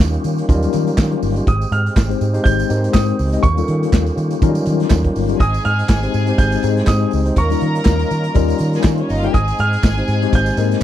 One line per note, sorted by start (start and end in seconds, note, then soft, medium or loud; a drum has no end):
0.00 0.16 D#2 loud
0.00 1.45 D#3 medium
0.00 0.16 G3 loud
0.00 1.45 A#3 medium
0.00 0.17 C#4 medium
0.00 1.45 C#4 medium
0.00 0.17 D#4 medium
0.00 0.17 F4 medium
0.00 1.45 F4 medium
0.00 5.36 G4 medium
0.00 0.17 A#4 medium
0.00 0.45 C#6 medium
0.00 snare loud
0.14 closed hi-hat medium
0.24 0.41 D#3 medium
0.24 closed hi-hat medium
0.24 tambourine medium
0.37 closed hi-hat medium
0.37 tambourine soft
0.48 0.66 D#2 loud
0.48 0.55 F#3 medium
0.48 1.03 C#4 loud
0.48 1.03 D#4 loud
0.48 1.03 F4 loud
0.48 1.03 A#4 loud
0.48 kick loud
0.48 closed hi-hat medium
0.48 tambourine medium
0.54 1.05 G3 loud
0.62 closed hi-hat medium
0.62 tambourine medium
0.73 0.90 D#3 loud
0.73 closed hi-hat medium
0.73 tambourine medium
0.87 closed hi-hat soft
0.87 tambourine soft
0.98 1.14 D#3 loud
0.98 kick loud
0.98 snare loud
0.98 clap loud
0.98 tambourine loud
1.12 closed hi-hat soft
1.23 1.39 G1 medium
1.23 open hi-hat medium
1.23 tambourine medium
1.36 1.47 G3 medium
1.36 1.47 C#4 medium
1.36 1.47 D#4 medium
1.36 1.47 F4 medium
1.36 1.47 G4 medium
1.36 closed hi-hat soft
1.36 tambourine soft
1.47 1.64 G#1 loud
1.47 3.42 G#3 medium
1.47 3.41 C4 medium
1.47 1.53 D#6 medium
1.47 kick loud
1.47 closed hi-hat medium
1.61 closed hi-hat soft
1.61 tambourine medium
1.71 1.88 G#2 loud
1.71 2.48 F6 loud
1.71 closed hi-hat medium
1.86 closed hi-hat soft
1.96 2.13 G#1 loud
1.96 kick loud
1.96 snare loud
1.96 clap medium
1.96 tambourine loud
2.09 2.23 G#3 medium
2.09 2.24 C4 medium
2.09 2.24 D#4 medium
2.09 2.24 G4 medium
2.09 2.24 C5 medium
2.09 closed hi-hat medium
2.09 tambourine soft
2.21 2.37 G#2 loud
2.21 closed hi-hat medium
2.21 tambourine medium
2.33 2.57 G#3 medium
2.33 2.57 C4 medium
2.33 2.57 D#4 medium
2.33 2.57 G4 medium
2.33 2.57 C5 loud
2.33 closed hi-hat medium
2.33 tambourine soft
2.44 2.62 G#1 loud
2.44 2.95 G6 loud
2.44 kick loud
2.44 closed hi-hat medium
2.44 tambourine medium
2.59 closed hi-hat medium
2.59 tambourine medium
2.70 2.87 G#2 loud
2.70 3.09 G#3 medium
2.70 3.09 C4 medium
2.70 3.10 D#4 medium
2.70 3.10 G4 medium
2.70 2.77 A#4 medium
2.70 closed hi-hat medium
2.70 tambourine medium
2.77 3.13 C5 loud
2.84 closed hi-hat soft
2.84 tambourine soft
2.93 3.11 G#2 loud
2.93 3.44 D#6 medium
2.93 kick loud
2.93 snare loud
2.93 clap medium
2.93 tambourine loud
3.08 closed hi-hat soft
3.19 3.36 C#2 loud
3.19 open hi-hat medium
3.19 tambourine medium
3.32 3.43 G#3 medium
3.32 3.43 C4 medium
3.32 3.44 D#4 medium
3.32 3.44 G4 medium
3.32 3.44 D#5 medium
3.32 closed hi-hat soft
3.32 tambourine soft
3.43 3.60 D#2 loud
3.43 5.38 D#3 medium
3.43 5.38 A#3 medium
3.43 5.38 C#4 medium
3.43 5.38 F4 medium
3.43 4.37 C#6 medium
3.43 kick loud
3.43 closed hi-hat medium
3.57 4.10 G3 medium
3.57 4.10 C#4 medium
3.57 4.11 D#4 medium
3.57 4.11 F4 medium
3.57 3.63 A4 medium
3.57 closed hi-hat soft
3.57 tambourine medium
3.64 4.14 A#4 medium
3.64 closed hi-hat medium
3.69 3.85 D#3 loud
3.83 closed hi-hat soft
3.93 4.09 D#2 loud
3.93 kick loud
3.93 snare loud
3.93 clap loud
3.93 tambourine loud
4.06 closed hi-hat soft
4.06 tambourine soft
4.17 4.34 D#3 loud
4.17 closed hi-hat medium
4.17 tambourine medium
4.30 closed hi-hat medium
4.30 tambourine soft
4.42 4.59 D#3 medium
4.42 4.48 F#3 medium
4.42 4.96 C#4 loud
4.42 4.96 D#4 loud
4.42 4.97 F4 loud
4.42 4.97 A#4 loud
4.42 kick loud
4.42 closed hi-hat medium
4.42 tambourine medium
4.48 4.99 G3 loud
4.55 closed hi-hat medium
4.55 tambourine medium
4.66 4.83 D#3 loud
4.66 closed hi-hat medium
4.66 tambourine medium
4.80 snare soft
4.80 closed hi-hat medium
4.90 5.08 D#2 loud
4.90 kick loud
4.90 snare loud
4.90 clap medium
4.90 tambourine loud
5.04 kick medium
5.04 closed hi-hat soft
5.16 5.33 G1 loud
5.16 open hi-hat medium
5.16 tambourine soft
5.28 5.40 G3 medium
5.28 5.40 C#4 medium
5.28 5.40 D#4 medium
5.28 5.40 F4 medium
5.28 5.40 G4 medium
5.28 closed hi-hat soft
5.28 tambourine soft
5.39 5.57 G#1 loud
5.39 7.35 G#3 medium
5.39 7.35 C4 medium
5.39 9.30 D#4 medium
5.39 7.09 G#4 loud
5.39 7.09 G#5 loud
5.39 5.66 D#6 loud
5.39 kick loud
5.39 closed hi-hat medium
5.54 closed hi-hat soft
5.54 tambourine medium
5.65 5.82 G#2 loud
5.65 6.41 F6 loud
5.65 closed hi-hat medium
5.79 closed hi-hat soft
5.89 6.06 G#1 loud
5.89 kick loud
5.89 snare loud
5.89 clap loud
5.89 tambourine medium
6.02 6.17 G#3 medium
6.02 6.17 C4 medium
6.02 6.17 D#4 medium
6.02 6.18 G4 medium
6.02 6.17 C5 medium
6.02 closed hi-hat medium
6.14 6.31 G#2 loud
6.14 closed hi-hat soft
6.14 tambourine medium
6.27 6.51 G#3 medium
6.27 6.51 C4 medium
6.27 6.51 D#4 medium
6.27 6.51 G4 medium
6.27 6.51 C5 medium
6.27 closed hi-hat soft
6.27 tambourine soft
6.38 6.55 G#1 loud
6.38 6.84 G6 medium
6.38 kick loud
6.38 closed hi-hat medium
6.38 tambourine medium
6.52 closed hi-hat medium
6.52 tambourine medium
6.63 6.80 G#2 loud
6.63 7.03 G#3 medium
6.63 7.03 C4 medium
6.63 7.03 D#4 medium
6.63 7.03 G#4 medium
6.63 7.03 C5 medium
6.63 closed hi-hat medium
6.63 tambourine medium
6.77 snare soft
6.77 closed hi-hat soft
6.87 7.04 G#2 loud
6.87 7.38 D#6 medium
6.87 kick loud
6.87 snare loud
6.87 clap loud
6.87 tambourine loud
7.01 closed hi-hat soft
7.11 7.30 C#2 loud
7.11 open hi-hat medium
7.11 tambourine medium
7.25 7.37 G#3 medium
7.25 7.37 C4 medium
7.25 7.37 D#4 medium
7.25 7.37 G4 medium
7.25 7.37 C5 medium
7.25 closed hi-hat soft
7.25 tambourine soft
7.36 7.53 D#2 loud
7.36 9.32 D#3 medium
7.36 9.32 A#3 medium
7.36 9.31 C#4 medium
7.36 9.32 F4 medium
7.36 8.71 A#4 loud
7.36 8.71 A#5 loud
7.36 8.32 C#6 medium
7.36 kick loud
7.36 closed hi-hat medium
7.50 8.04 G3 loud
7.50 8.04 C#4 medium
7.50 8.04 D#4 medium
7.50 8.04 F4 medium
7.50 8.05 A#4 loud
7.50 closed hi-hat soft
7.50 tambourine medium
7.60 7.78 D#3 loud
7.60 closed hi-hat medium
7.75 closed hi-hat medium
7.85 8.03 D#2 loud
7.85 kick loud
7.85 snare loud
7.85 clap medium
7.85 tambourine medium
7.99 closed hi-hat medium
7.99 tambourine soft
8.11 8.28 D#3 loud
8.11 closed hi-hat medium
8.11 tambourine soft
8.24 closed hi-hat soft
8.24 tambourine soft
8.35 8.52 D#2 medium
8.35 8.90 G3 loud
8.35 8.90 C#4 loud
8.35 8.90 D#4 loud
8.35 8.90 F4 loud
8.35 8.91 A#4 loud
8.35 kick loud
8.35 closed hi-hat medium
8.35 tambourine medium
8.48 closed hi-hat medium
8.48 tambourine medium
8.58 8.77 D#3 loud
8.58 closed hi-hat medium
8.58 tambourine medium
8.73 8.85 G#4 medium
8.73 snare soft
8.73 closed hi-hat soft
8.73 tambourine soft
8.77 8.85 G#3 medium
8.83 9.01 D#3 loud
8.83 8.93 A#3 medium
8.83 8.93 A#4 medium
8.83 kick loud
8.83 snare loud
8.83 clap loud
8.83 tambourine loud
8.94 9.02 C4 medium
8.94 9.02 C5 medium
8.94 closed hi-hat soft
9.02 9.10 C#4 medium
9.02 9.10 C#5 medium
9.09 9.26 G1 loud
9.09 9.18 D#4 medium
9.09 9.19 D#5 loud
9.09 open hi-hat medium
9.09 tambourine medium
9.18 9.34 G3 medium
9.18 9.26 F4 medium
9.18 9.26 F5 loud
9.23 9.34 C#4 medium
9.23 9.34 D#4 medium
9.23 9.34 F4 medium
9.23 9.34 G4 loud
9.23 9.34 A#4 medium
9.23 9.34 G5 loud
9.23 closed hi-hat soft
9.33 9.51 G#1 loud
9.33 10.83 G#3 medium
9.33 10.83 C4 medium
9.33 10.83 D#4 medium
9.33 10.83 G#4 loud
9.33 10.83 G#5 loud
9.33 9.60 D#6 medium
9.33 kick loud
9.33 closed hi-hat medium
9.48 closed hi-hat soft
9.48 tambourine medium
9.59 9.76 G#2 loud
9.59 10.36 F6 loud
9.59 closed hi-hat medium
9.73 closed hi-hat medium
9.83 10.01 G#1 loud
9.83 kick loud
9.83 snare loud
9.83 clap loud
9.83 tambourine loud
9.97 10.11 G#3 medium
9.97 10.12 C4 medium
9.97 10.12 D#4 medium
9.97 10.12 G4 medium
9.97 10.12 C5 medium
9.97 closed hi-hat medium
10.07 10.25 G#2 loud
10.07 closed hi-hat soft
10.07 tambourine medium
10.22 10.45 G#3 medium
10.22 10.45 C4 medium
10.22 10.45 D#4 medium
10.22 10.45 G4 medium
10.22 10.46 C5 loud
10.22 closed hi-hat soft
10.33 10.50 G#1 loud
10.33 10.83 G6 medium
10.33 kick loud
10.33 closed hi-hat medium
10.33 tambourine medium
10.46 closed hi-hat medium
10.46 tambourine medium
10.57 10.74 G#2 loud
10.57 10.83 G#3 medium
10.57 10.64 A#3 medium
10.57 10.83 D#4 medium
10.57 10.83 G#4 medium
10.57 10.83 A#4 loud
10.57 closed hi-hat medium
10.57 tambourine medium
10.63 10.83 C4 medium
10.72 snare soft
10.72 closed hi-hat soft
10.72 tambourine soft